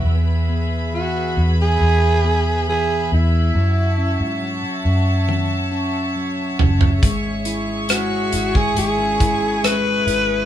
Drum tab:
HH |----------------|----------------|x-x-x-x-x-x-x-x-|
SD |----------------|----------------|----r--r----r---|
T1 |----------------|--------o-------|----------------|
FT |----------------|--------------oo|----------------|
BD |----------------|----------------|o------o--o-----|